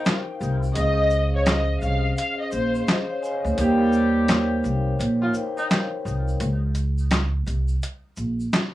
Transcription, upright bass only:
0.41 C2
0.76 C#2
1.82 C2
2.52 A#1
3.44 D2
3.58 D#2
4.64 C2
4.99 A#1
6.05 C2
6.40 C#2
7.46 C2
8.17 A#1

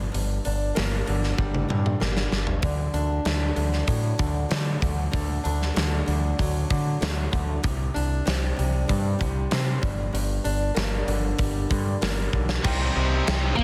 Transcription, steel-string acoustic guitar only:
Already playing: G2
0.12 G2
0.45 D4
0.75 A#3
1.06 D3
1.38 G3
1.69 D3
2.00 A#3
2.32 D3
2.63 D3
2.94 D4
3.26 A3
3.56 D3
3.87 F#3
4.18 D3
4.49 A3
4.81 D3
5.11 D3
5.44 D4
5.74 A3
6.06 D3
6.39 F#3
6.70 D3
7.01 A3
7.32 D3
7.63 C3
7.94 D4
8.25 C4
8.56 C3
8.88 G3
9.19 C3
9.51 C4
9.81 G2
10.13 G2
10.44 D4
10.75 A#3
11.08 D3
11.39 G3
11.70 D3
12.01 A#3
12.32 D3

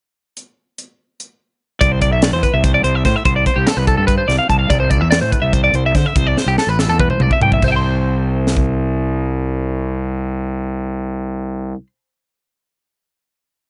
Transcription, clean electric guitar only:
1.81 D5
1.92 C5
2.02 D5
2.13 E5
2.23 D5
2.33 C5
2.43 B4
2.54 E5
2.64 C5
2.74 D5
2.84 C5
2.95 E5
3.05 C5
3.16 E5
3.25 C5
3.36 D5
3.47 C5
3.56 G4
3.67 A4
3.77 B4
3.88 A4
3.97 A4
4.07 B4
4.18 C5
4.28 D5
4.38 F5
4.50 A5
4.59 F5
4.70 D5
4.80 C5
4.90 D5
5.01 E5
5.11 D5
5.21 C5
5.32 B4
5.42 E5
5.53 C5
5.64 D5
5.75 C5
5.86 E5
5.95 C5
6.06 E5
6.17 C5
6.27 D5
6.38 C5
6.48 G4
6.58 A4
6.69 B4
6.79 A4
6.89 A4
7.00 B4
7.10 C5
7.22 D5
7.33 E5
7.43 G5
7.54 E5
7.64 C5 E5
7.72 G5
7.76 C6

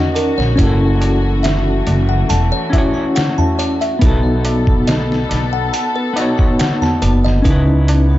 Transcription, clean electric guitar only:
Already playing: C#4 D#4 F#4 D#5
0.56 C#4 E4
0.61 F#4 A4
2.70 C#4 E4
2.75 F#4 C#5
3.99 B3 D#4
4.05 F#4 A4
6.13 B3 D#4
6.19 F#4 C#5
7.42 C#4 D#4
7.47 E4 B4

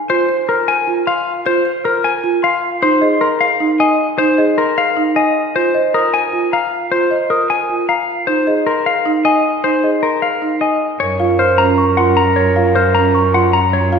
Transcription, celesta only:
0.49 F6
1.07 C6
1.85 F6
2.43 C6
3.01 D#5
3.21 C6
3.80 G#5
4.38 D#5
4.58 C6
5.16 G#5
5.74 D#5
5.94 D#6
6.53 A#5
7.11 D#5
7.30 D#6
7.89 A#5
8.47 D#5
8.67 C6
9.25 G#5
9.84 D#5
10.03 C6
10.61 G#5
11.20 F5
11.39 F6
11.78 C#6
11.97 C6
12.56 F5
12.76 F6
13.15 C#6
13.34 C6
13.92 F5

